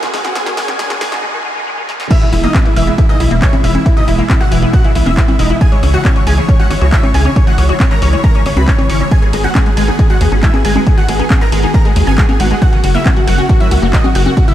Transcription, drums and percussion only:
0.03 snare, closed hi-hat
0.14 snare, open hi-hat
0.25 snare, closed hi-hat
0.35 snare, closed hi-hat
0.46 snare, closed hi-hat
0.57 snare, open hi-hat
0.68 snare, closed hi-hat, high conga
0.79 snare, closed hi-hat
0.90 snare, closed hi-hat
1.01 snare, open hi-hat
1.12 snare, closed hi-hat
1.89 snare
2.00 snare
2.11 kick, closed hi-hat, crash
2.22 closed hi-hat
2.33 open hi-hat
2.44 closed hi-hat
2.54 kick, clap, closed hi-hat, high conga
2.66 closed hi-hat
2.76 open hi-hat
2.87 closed hi-hat
2.98 kick, closed hi-hat
3.09 closed hi-hat
3.20 open hi-hat
3.31 closed hi-hat
3.42 kick, clap, closed hi-hat
3.53 closed hi-hat, high conga
3.64 open hi-hat
3.75 closed hi-hat, high conga
3.86 kick, closed hi-hat
3.97 closed hi-hat
4.08 open hi-hat
4.19 closed hi-hat
4.30 kick, clap, closed hi-hat, high conga
4.41 clap, closed hi-hat
4.52 open hi-hat
4.63 closed hi-hat
4.73 kick, closed hi-hat
4.85 closed hi-hat
4.95 open hi-hat
5.06 closed hi-hat, high conga
5.17 kick, clap, closed hi-hat
5.28 closed hi-hat, high conga
5.39 open hi-hat
5.50 closed hi-hat
5.61 kick, closed hi-hat
5.72 closed hi-hat
5.83 open hi-hat
5.94 closed hi-hat
6.05 kick, clap, closed hi-hat, high conga
6.16 closed hi-hat
6.27 open hi-hat
6.49 kick, closed hi-hat
6.60 closed hi-hat
6.71 open hi-hat
6.81 closed hi-hat
6.92 kick, clap, closed hi-hat
7.03 closed hi-hat, high conga
7.14 open hi-hat
7.25 high conga
7.36 kick, closed hi-hat
7.47 closed hi-hat
7.58 open hi-hat
7.69 closed hi-hat
7.80 kick, clap, closed hi-hat, high conga
7.91 clap, closed hi-hat
8.02 open hi-hat
8.13 closed hi-hat
8.24 kick, closed hi-hat
8.35 closed hi-hat
8.46 open hi-hat
8.57 closed hi-hat, high conga
8.68 kick, clap, closed hi-hat
8.79 closed hi-hat, high conga
8.90 open hi-hat
9.00 closed hi-hat
9.11 kick, closed hi-hat
9.22 closed hi-hat
9.33 open hi-hat, ride
9.44 closed hi-hat
9.55 kick, clap, closed hi-hat, high conga
9.66 closed hi-hat
9.77 open hi-hat, ride
9.88 closed hi-hat
9.99 kick, closed hi-hat
10.10 closed hi-hat
10.21 open hi-hat, ride
10.32 closed hi-hat
10.43 kick, clap, closed hi-hat
10.54 closed hi-hat, high conga
10.65 open hi-hat, ride
10.76 closed hi-hat, high conga
10.87 kick, closed hi-hat
10.98 closed hi-hat
11.09 open hi-hat, ride
11.20 closed hi-hat
11.30 kick, clap, closed hi-hat, high conga
11.41 clap, closed hi-hat
11.52 open hi-hat, ride
11.63 closed hi-hat
11.74 kick, closed hi-hat
11.85 closed hi-hat
11.96 open hi-hat, ride
12.07 closed hi-hat, high conga
12.18 kick, clap, closed hi-hat
12.29 closed hi-hat, high conga
12.40 open hi-hat, ride
12.51 closed hi-hat
12.62 kick, closed hi-hat
12.73 closed hi-hat
12.84 open hi-hat, ride
12.95 closed hi-hat
13.06 kick, clap, closed hi-hat, high conga
13.17 closed hi-hat
13.28 open hi-hat, ride
13.39 closed hi-hat
13.49 kick, closed hi-hat
13.60 closed hi-hat
13.71 open hi-hat, ride
13.82 closed hi-hat
13.93 kick, clap, closed hi-hat
14.04 closed hi-hat, high conga
14.15 open hi-hat, ride
14.26 closed hi-hat, high conga
14.37 kick, closed hi-hat
14.48 closed hi-hat

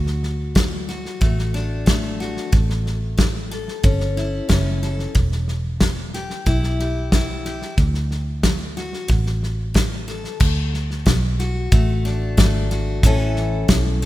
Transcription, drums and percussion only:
0.06 snare
0.23 snare
0.56 kick, snare, hi-hat pedal
0.89 snare
1.05 snare
1.22 kick, snare
1.39 snare
1.55 snare
1.87 kick, snare, hi-hat pedal
2.21 snare
2.37 snare
2.53 kick, snare
2.70 snare
2.86 snare
3.19 kick, snare, hi-hat pedal
3.52 snare
3.68 snare
3.84 kick, snare
4.00 snare
4.17 snare
4.49 kick, snare, hi-hat pedal
4.83 snare
4.99 snare
5.15 kick, snare
5.32 snare
5.48 snare
5.80 kick, snare, hi-hat pedal
6.14 snare
6.30 snare
6.46 kick, snare
6.63 snare
6.79 snare
7.12 kick, snare, hi-hat pedal
7.45 snare
7.62 snare
7.77 kick, snare
7.94 snare
8.11 snare
8.43 kick, snare, hi-hat pedal
8.77 snare
8.93 snare
9.10 kick, snare
9.26 snare
9.43 snare
9.75 kick, snare, hi-hat pedal
10.08 snare
10.24 snare
10.41 kick, snare, crash
10.74 snare
10.91 snare
11.06 kick, snare, hi-hat pedal
11.39 snare
11.72 kick, snare
12.05 snare
12.38 kick, snare, hi-hat pedal
12.71 snare
13.03 kick, snare
13.36 snare
13.69 kick, snare, hi-hat pedal
14.02 snare

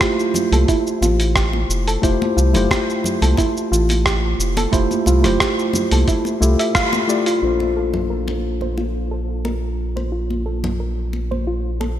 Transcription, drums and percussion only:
0.01 kick, cross-stick, open hi-hat, shaker
0.19 shaker
0.34 muted conga, low conga, shaker
0.52 open hi-hat, high conga, shaker
0.68 kick, open hi-hat, shaker
0.87 shaker
1.03 muted conga, shaker
1.20 open hi-hat, shaker
1.36 kick, cross-stick, open hi-hat, shaker
1.53 muted conga
1.70 shaker
1.88 open hi-hat, shaker
2.03 kick, open hi-hat, shaker
2.22 muted conga, high conga
2.38 shaker
2.54 open hi-hat, low conga, shaker
2.71 kick, cross-stick, open hi-hat, muted conga, shaker
2.90 shaker
3.04 low conga, shaker
3.22 open hi-hat, high conga, shaker
3.37 kick, open hi-hat, muted conga, shaker
3.57 shaker
3.73 shaker
3.89 open hi-hat, muted conga, shaker
4.06 kick, cross-stick, open hi-hat, shaker
4.40 shaker
4.57 open hi-hat, muted conga, shaker
4.73 kick, open hi-hat, shaker
4.91 high conga, shaker
5.06 muted conga, shaker
5.24 cross-stick, open hi-hat, low conga, shaker
5.40 kick, cross-stick, open hi-hat, shaker
5.59 shaker
5.73 muted conga, low conga, shaker
5.91 open hi-hat, high conga, shaker
6.08 kick, open hi-hat, shaker
6.25 muted conga, shaker
6.42 shaker
6.59 open hi-hat, shaker
6.75 kick, cross-stick, open hi-hat, shaker
6.93 muted conga, shaker
7.09 shaker
7.26 open hi-hat, shaker
7.60 muted conga, high conga
7.94 low conga
8.28 muted conga
8.61 high conga
8.78 muted conga
9.45 muted conga
9.97 muted conga
10.30 high conga
10.64 muted conga, low conga
11.13 muted conga
11.32 high conga
11.81 muted conga

